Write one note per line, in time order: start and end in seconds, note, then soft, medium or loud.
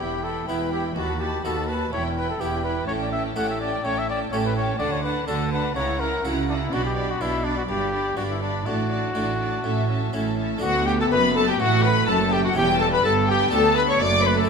0.00 0.42 E1 soft
0.00 0.39 E2 soft
0.00 0.42 E2 soft
0.00 0.21 E4 soft
0.00 0.25 G4 medium
0.00 0.22 G5 soft
0.00 0.22 B5 soft
0.23 0.46 E4 soft
0.23 0.47 A4 medium
0.23 0.47 G5 soft
0.23 0.47 B5 soft
0.47 0.90 E1 soft
0.47 0.90 E2 soft
0.47 0.88 E2 soft
0.47 0.84 B3 soft
0.47 0.70 E4 soft
0.47 0.84 E4 soft
0.47 0.71 B4 medium
0.47 0.71 G5 soft
0.47 0.72 B5 soft
0.71 0.95 E4 soft
0.71 0.83 G4 medium
0.71 0.96 G5 soft
0.71 0.94 B5 soft
0.95 1.35 D#2 soft
0.95 1.39 D#2 medium
0.95 1.17 F#4 soft
0.95 1.21 F#4 medium
0.95 1.19 A5 soft
0.95 1.19 B5 soft
1.18 1.42 F#4 soft
1.18 1.44 G4 medium
1.18 1.44 A5 soft
1.18 1.42 B5 soft
1.43 1.86 D#2 medium
1.43 1.87 D#2 soft
1.43 1.84 D#2 soft
1.43 1.79 B3 soft
1.43 1.66 F#4 soft
1.43 1.80 F#4 soft
1.43 1.70 A4 medium
1.43 1.67 A5 soft
1.43 1.66 B5 soft
1.67 1.91 F#4 soft
1.67 1.92 B4 medium
1.67 1.92 A5 soft
1.67 1.91 B5 soft
1.92 2.35 E1 medium
1.92 2.35 E2 soft
1.92 2.32 E2 soft
1.92 2.16 E4 soft
1.92 2.04 C#5 medium
1.92 2.16 G5 soft
1.92 2.14 B5 soft
2.15 2.40 E4 soft
2.15 2.29 B4 medium
2.15 2.39 G5 soft
2.15 2.38 B5 soft
2.30 2.42 A4 medium
2.39 2.83 E1 soft
2.39 2.82 E2 medium
2.39 2.80 E2 soft
2.39 2.76 B3 soft
2.39 2.63 E4 soft
2.39 2.76 E4 soft
2.39 2.63 G4 medium
2.39 2.64 G5 soft
2.39 2.63 B5 soft
2.64 2.88 E4 soft
2.64 2.87 B4 medium
2.64 2.88 G5 soft
2.64 2.88 B5 soft
2.87 3.31 A1 medium
2.87 3.30 A2 medium
2.87 3.28 A2 soft
2.87 3.11 C#4 soft
2.87 2.93 C#5 medium
2.87 3.12 G5 soft
2.87 3.11 A5 soft
3.01 3.12 D5 medium
3.12 3.35 C#4 soft
3.12 3.23 E5 medium
3.12 3.35 G5 soft
3.12 3.35 A5 soft
3.35 3.79 A1 medium
3.35 3.78 A2 medium
3.35 3.75 A2 soft
3.35 3.71 A3 soft
3.35 3.59 C#4 soft
3.35 3.71 C#4 soft
3.35 3.71 G4 soft
3.35 3.48 F#5 medium
3.35 3.60 G5 soft
3.35 3.59 A5 soft
3.50 3.60 E5 medium
3.60 3.82 C#4 soft
3.60 3.86 D5 medium
3.60 3.83 G5 medium
3.60 3.84 A5 soft
3.83 4.27 A1 medium
3.83 4.26 A2 medium
3.83 4.24 A2 soft
3.83 4.06 C#4 soft
3.83 4.00 C#5 medium
3.83 4.07 G5 soft
3.83 4.08 A5 soft
3.98 4.09 E5 medium
4.07 4.30 C#4 soft
4.07 4.20 D5 medium
4.07 4.31 G5 soft
4.07 4.31 A5 soft
4.31 4.75 A1 medium
4.31 4.74 A2 medium
4.31 4.72 A2 soft
4.31 4.68 A3 soft
4.31 4.54 C#4 soft
4.31 4.67 C#4 soft
4.31 4.68 G4 soft
4.31 4.37 C#5 medium
4.31 4.55 G5 soft
4.31 4.55 A5 soft
4.46 4.56 B4 medium
4.56 4.79 C#4 soft
4.56 4.78 C#5 medium
4.56 4.80 G5 soft
4.56 4.78 A5 soft
4.79 5.22 D2 medium
4.79 5.22 D3 medium
4.79 5.19 D3 soft
4.79 5.02 D4 soft
4.79 4.94 D5 medium
4.79 5.03 F#5 medium
4.79 5.03 A5 medium
4.92 5.03 C#5 medium
5.04 5.27 D4 soft
5.04 5.27 B4 medium
5.04 5.26 F#5 soft
5.04 5.25 A5 soft
5.27 5.71 D2 medium
5.27 5.70 D3 medium
5.27 5.67 D3 soft
5.27 5.63 D4 soft
5.27 5.51 D4 soft
5.27 5.63 F#4 soft
5.27 5.51 A4 medium
5.27 5.50 F#5 soft
5.27 5.51 A5 soft
5.51 5.76 D4 soft
5.51 5.75 B4 medium
5.51 5.73 F#5 soft
5.51 5.76 A5 soft
5.75 6.18 C#2 medium
5.75 6.18 C#3 medium
5.75 6.16 C#3 soft
5.75 5.99 E4 soft
5.75 6.02 C#5 medium
5.75 5.97 F#5 medium
5.75 5.99 A#5 soft
5.98 6.23 E4 soft
5.98 6.24 A#4 medium
5.98 6.22 F#5 soft
5.98 6.24 A#5 soft
6.23 6.67 C#2 medium
6.23 6.66 C#3 medium
6.23 6.64 C#3 soft
6.23 6.47 E4 soft
6.23 6.59 E4 soft
6.23 6.59 F#4 soft
6.23 6.46 F#5 soft
6.23 6.48 A#5 soft
6.47 6.54 D4 medium
6.47 6.72 E4 soft
6.47 6.71 F#5 soft
6.47 6.72 A#5 soft
6.61 6.75 E4 medium
6.70 7.15 B1 medium
6.70 7.14 B2 medium
6.70 7.12 B2 soft
6.70 6.95 D4 soft
6.70 6.84 F#4 medium
6.70 6.93 D5 medium
6.70 6.96 B5 medium
6.85 7.12 G4 medium
6.94 7.19 D4 soft
6.94 7.18 D5 soft
6.94 7.21 B5 soft
7.11 7.23 F#4 medium
7.19 7.63 B1 medium
7.19 7.63 B2 medium
7.19 7.60 B2 soft
7.19 7.43 D4 soft
7.19 7.56 D4 soft
7.19 7.46 E4 medium
7.19 7.43 D5 soft
7.19 7.45 B5 soft
7.44 7.57 D4 medium
7.44 7.67 D4 soft
7.44 7.67 D5 medium
7.44 7.70 B5 soft
7.58 7.63 F#4 medium
7.68 8.12 G1 medium
7.68 8.11 G2 medium
7.68 8.08 G2 soft
7.68 7.91 D4 soft
7.68 8.16 G4 medium
7.68 7.91 D5 medium
7.68 7.93 B5 soft
7.92 8.16 D4 soft
7.92 8.15 D5 soft
7.92 8.17 B5 soft
8.16 8.61 G1 medium
8.16 8.60 G2 medium
8.16 8.57 G2 soft
8.16 8.40 D4 soft
8.16 8.52 D4 soft
8.16 8.23 F#4 medium
8.16 8.40 D5 soft
8.16 8.42 B5 soft
8.31 8.42 E4 medium
8.41 8.65 D4 soft
8.41 8.68 D4 medium
8.41 8.64 D5 soft
8.41 8.67 B5 soft
8.65 9.10 A1 medium
8.65 9.10 A2 medium
8.65 9.07 A2 soft
8.65 8.90 D4 soft
8.65 10.38 F#4 medium
8.65 8.89 D5 soft
8.65 8.91 A5 soft
8.90 9.14 D4 soft
8.90 9.13 D5 soft
8.90 9.16 A5 soft
9.14 9.59 A1 medium
9.14 9.56 A2 soft
9.14 9.59 A2 medium
9.14 9.51 D4 soft
9.14 9.40 D4 soft
9.14 9.38 D5 soft
9.14 9.40 A5 soft
9.40 9.65 D4 soft
9.40 9.64 D5 soft
9.40 9.63 A5 soft
9.64 10.08 A1 medium
9.64 10.05 A2 soft
9.64 10.08 A2 medium
9.64 9.88 C#4 soft
9.64 9.88 E5 soft
9.64 9.89 A5 soft
9.89 10.13 C#4 soft
9.89 10.13 E5 soft
9.89 10.14 A5 soft
10.13 10.57 A1 medium
10.13 10.54 A2 soft
10.13 10.57 A2 medium
10.13 10.49 C#4 soft
10.13 10.36 C#4 soft
10.13 10.49 E4 soft
10.13 10.37 E5 soft
10.13 10.37 A5 soft
10.38 10.62 C#4 soft
10.38 10.62 E5 medium
10.38 10.62 A5 medium
10.58 12.50 A3 medium
10.58 11.55 B3 medium
10.58 12.51 D4 medium
10.58 12.52 F#4 medium
10.62 11.08 D2 medium
10.62 11.07 D2 medium
10.62 11.08 D2 medium
10.62 10.85 F#4 medium
10.62 10.88 F#4 medium
10.62 10.86 F#5 loud
10.86 10.99 G4 medium
10.86 10.92 G5 medium
10.98 11.11 A4 medium
10.98 11.06 A4 medium
10.98 11.05 A5 medium
11.11 11.59 F#1 medium
11.11 11.59 F#2 medium
11.11 11.56 F#2 medium
11.11 11.22 B4 medium
11.11 11.36 B4 medium
11.11 11.36 B5 loud
11.36 11.48 A4 medium
11.36 11.48 A5 medium
11.48 11.62 G4 medium
11.48 11.60 G4 medium
11.48 11.61 G5 medium
11.60 12.07 A1 medium
11.60 12.04 A2 medium
11.60 12.07 A2 medium
11.60 12.57 A3 medium
11.60 11.84 F#4 medium
11.60 11.84 F#5 loud
11.83 12.10 B4 medium
11.83 12.09 B4 medium
11.83 12.09 B5 loud
12.08 12.56 F#1 medium
12.08 12.55 F#2 medium
12.08 12.52 F#2 medium
12.08 12.32 A4 medium
12.08 12.34 A4 medium
12.08 12.33 A5 medium
12.31 12.44 G4 medium
12.31 12.45 G5 medium
12.44 12.49 F#4 medium
12.44 12.56 F#4 medium
12.44 12.57 F#5 medium
12.53 13.04 E1 medium
12.53 13.01 E2 medium
12.53 13.04 E2 medium
12.53 13.04 G3 medium
12.53 13.49 C#4 medium
12.53 13.49 E4 medium
12.53 12.80 G4 medium
12.53 12.80 G5 loud
12.58 12.68 G4 medium
12.79 12.92 A4 medium
12.79 12.86 A4 medium
12.79 12.92 A5 medium
12.90 13.03 B4 medium
12.90 13.04 B4 medium
12.90 13.05 B5 medium
13.03 13.52 G1 medium
13.03 13.49 G2 medium
13.03 13.52 G2 medium
13.03 14.00 B3 medium
13.03 13.28 A4 medium
13.03 13.29 A4 medium
13.03 13.13 A5 loud
13.28 13.52 G4 medium
13.28 13.41 G4 medium
13.28 13.53 G5 medium
13.51 14.00 D2 medium
13.51 13.98 D2 medium
13.51 14.45 D4 medium
13.51 14.46 F#4 medium
13.51 13.76 A4 medium
13.51 13.77 A4 medium
13.51 13.77 A5 loud
13.76 13.81 B4 medium
13.76 13.83 B4 medium
13.76 13.89 B5 loud
13.88 14.00 C#5 medium
13.88 14.04 C#5 medium
13.88 14.02 C#6 medium
14.00 14.49 F#1 medium
14.00 14.48 F#2 medium
14.00 14.46 F#2 medium
14.00 14.49 A3 medium
14.00 14.25 D5 medium
14.00 14.28 D5 medium
14.00 14.25 D6 loud
14.23 14.36 B4 medium
14.23 14.38 B4 medium
14.23 14.37 B5 medium
14.37 14.42 A4 medium
14.37 14.49 A4 medium
14.37 14.49 A5 medium
14.44 14.49 A3 medium
14.44 14.49 E4 medium